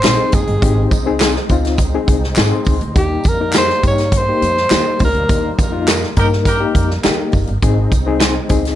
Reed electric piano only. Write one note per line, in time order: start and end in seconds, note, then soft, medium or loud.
0.04 0.41 C4 medium
0.04 0.42 D#4 medium
0.04 0.42 G#4 medium
0.63 0.90 C4 medium
0.63 0.90 D#4 medium
0.63 0.91 G4 medium
1.06 1.34 C4 medium
1.06 1.34 D#4 medium
1.06 1.34 G#4 loud
1.51 1.78 C4 medium
1.51 1.78 D#4 medium
1.51 1.79 F4 medium
1.94 2.22 C4 medium
1.94 2.22 D#4 medium
1.94 2.22 G#4 medium
2.38 2.75 C4 medium
2.38 2.75 D#4 medium
2.38 2.75 G#4 medium
2.38 2.92 C6 medium
2.95 3.23 A#3 medium
2.95 3.23 D#4 medium
2.95 3.24 G4 medium
3.40 3.68 A#3 medium
3.40 3.68 D#4 medium
3.40 3.68 A#4 medium
3.83 4.11 A#3 medium
3.83 4.11 D#4 medium
3.83 4.11 G4 medium
4.28 4.56 A#3 medium
4.28 4.56 D#4 medium
4.28 4.56 G4 medium
4.70 5.08 A#3 medium
4.70 5.08 D#4 medium
4.70 5.08 G4 medium
5.29 5.57 A#3 medium
5.29 5.58 D#4 medium
5.29 5.58 A#4 medium
5.72 6.00 A#3 medium
5.72 6.01 D#4 medium
5.72 6.01 F4 medium
6.17 6.45 A#3 medium
6.17 6.45 D#4 medium
6.17 6.45 A#4 medium
6.60 6.88 A#3 medium
6.60 6.88 D#4 medium
6.60 6.88 G4 medium
7.04 7.41 A#3 medium
7.04 7.42 D#4 medium
7.04 7.42 G4 medium
7.62 7.90 C4 medium
7.62 7.91 D#4 medium
7.62 7.91 G#4 medium
8.06 8.34 C4 medium
8.06 8.34 D#4 medium
8.06 8.35 G#4 loud
8.49 8.75 C4 medium
8.49 8.75 D#4 medium
8.49 8.75 G#4 medium